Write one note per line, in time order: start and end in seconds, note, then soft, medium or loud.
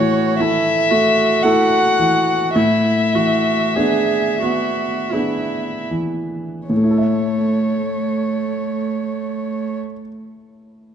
0.00 2.51 A2 medium
0.00 0.71 E3 soft
0.00 0.42 F#4 medium
0.00 0.38 C#5 medium
0.38 0.88 A3 soft
0.38 0.92 E4 medium
0.38 0.88 E4 soft
0.38 0.88 A4 soft
0.38 1.45 E5 medium
0.91 1.43 A3 soft
0.91 2.58 F#4 medium
1.43 1.95 A3 soft
1.43 1.95 E4 soft
1.43 1.95 A4 soft
1.43 2.54 F#5 medium
1.99 2.56 E3 soft
2.55 6.66 A2 medium
2.55 3.17 E4 medium
2.55 5.87 E5 medium
3.15 4.15 E3 soft
3.15 3.78 F#4 soft
3.76 4.38 B3 soft
3.76 4.38 D4 soft
3.76 4.41 G#4 soft
3.76 4.38 G#4 soft
4.42 5.11 B3 soft
4.42 5.14 F#4 soft
5.12 5.87 B3 soft
5.12 5.87 D4 soft
5.12 5.91 E4 soft
5.12 5.87 G#4 soft
5.91 6.70 E3 soft
6.69 9.78 A2 soft
6.69 9.78 A3 soft
6.69 9.77 C#5 soft
6.77 9.85 A3 soft
6.84 9.92 E4 soft
6.91 9.99 A4 soft
6.98 10.06 E5 soft